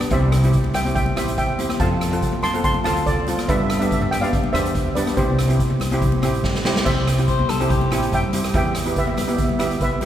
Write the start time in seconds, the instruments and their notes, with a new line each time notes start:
Already playing: steel pan D5
0.01 cross-stick, closed hi-hat, high conga
0.10 upright bass C2, steel pan C4 E4 G4 C5 E5, kick, closed hi-hat
0.32 cross-stick, closed hi-hat
0.43 steel pan C4 E4 G4, closed hi-hat
0.53 kick, closed hi-hat
0.64 upright bass C2, high conga
0.74 upright bass C2, steel pan E5 G5, cross-stick, closed hi-hat, low conga
0.85 steel pan C4 E4 G4, closed hi-hat, high conga
0.95 steel pan E5 G5, kick, closed hi-hat
1.06 high conga, low conga
1.16 upright bass A1, steel pan C4 E4 G4 C5 E5, cross-stick, closed hi-hat, high conga
1.28 closed hi-hat
1.38 upright bass E2, steel pan E5 G5, kick, closed hi-hat
1.59 steel pan C4 E4 G4, closed hi-hat, low conga
1.69 cross-stick, closed hi-hat, high conga
1.80 upright bass F2, steel pan C4 F4 A4 F5 A5, kick, closed hi-hat
2.01 cross-stick, closed hi-hat
2.12 steel pan C4 F4 A4, closed hi-hat
2.22 kick, closed hi-hat
2.32 upright bass F2, high conga
2.42 upright bass F2, steel pan A5 C6, cross-stick, closed hi-hat, low conga
2.53 steel pan C4 F4 A4, closed hi-hat, high conga
2.64 steel pan A5 C6, kick, closed hi-hat
2.74 high conga, low conga
2.84 upright bass D2, steel pan C4 F4 A4 F5 A5, cross-stick, closed hi-hat, high conga
2.97 closed hi-hat
3.06 upright bass D2, steel pan A4 D5, kick, closed hi-hat
3.27 steel pan C4 F4 A4, closed hi-hat, low conga
3.38 cross-stick, closed hi-hat, high conga
3.48 upright bass G2, steel pan B3 D4 G4 B4 E5, kick, closed hi-hat
3.56 steel pan E5
3.63 steel pan E5
3.70 steel pan E5, cross-stick, closed hi-hat
3.79 steel pan B3 D4 G4 E5, closed hi-hat
3.87 steel pan E5
3.91 steel pan E5, kick, closed hi-hat
4.01 upright bass G2, steel pan E5, high conga
4.11 upright bass G2, steel pan E5 G5, cross-stick, closed hi-hat
4.21 steel pan B3 D4 G4 D5 F5, closed hi-hat, high conga
4.33 kick, closed hi-hat
4.44 high conga, low conga
4.53 upright bass E2, steel pan B3 D4 G4 C5 E5, cross-stick, closed hi-hat, high conga
4.66 closed hi-hat
4.75 upright bass D2, kick, closed hi-hat
4.95 steel pan B3 D4 G4 B4 D5, closed hi-hat, low conga
5.07 cross-stick, closed hi-hat, high conga
5.17 upright bass C2, steel pan C4 E4 G4 C5, kick, closed hi-hat
5.39 cross-stick, closed hi-hat
5.49 steel pan C4 E4 G4, closed hi-hat
5.60 kick, closed hi-hat
5.70 upright bass C2, high conga
5.80 upright bass C2, cross-stick, closed hi-hat, low conga
5.91 steel pan C4 E4 G4, closed hi-hat, high conga
6.02 kick, closed hi-hat
6.12 high conga, low conga
6.22 upright bass A1, steel pan C4 E4 G4, cross-stick, closed hi-hat, high conga
6.34 closed hi-hat
6.44 upright bass G2, kick, snare
6.55 snare
6.65 steel pan C4 E4 G4, snare, low conga
6.76 snare, high conga
6.85 upright bass C2, steel pan C4 E4 G4 C5 E5, kick, crash
7.07 cross-stick, closed hi-hat
7.18 steel pan C4 E4 G4, closed hi-hat
7.28 cor anglais C5, kick, closed hi-hat
7.39 upright bass C2, high conga
7.49 upright bass C2, cor anglais A4, cross-stick, closed hi-hat, low conga
7.60 steel pan C4 E4 G4, closed hi-hat, high conga
7.70 cor anglais G4, kick, closed hi-hat
7.81 high conga, low conga
7.90 upright bass A1, steel pan C4 E4 G4, cross-stick, closed hi-hat, high conga
8.02 closed hi-hat
8.12 upright bass G2, steel pan E5 G5, kick, closed hi-hat
8.33 steel pan C4 E4 G4, closed hi-hat, low conga
8.44 cross-stick, closed hi-hat
8.54 upright bass E2, steel pan B3 E4 G4 E5 G5, kick, closed hi-hat
8.75 cross-stick, closed hi-hat
8.86 steel pan B3 E4 G4, closed hi-hat
8.96 steel pan B4 E5, kick, closed hi-hat
9.07 upright bass E2, steel pan E5, high conga
9.14 upright bass E2, steel pan E5, cross-stick, closed hi-hat, low conga
9.22 steel pan E5
9.27 steel pan B3 E4 G4 E5, closed hi-hat, high conga
9.37 steel pan E5, kick, closed hi-hat
9.44 steel pan E5
9.49 steel pan E5, high conga, low conga
9.59 upright bass D2, steel pan B3 E4 G4 E5, cross-stick, closed hi-hat, high conga
9.66 steel pan E5
9.71 closed hi-hat
9.81 upright bass B1, steel pan B4 E5, kick, closed hi-hat
10.01 steel pan B3 E4, closed hi-hat, low conga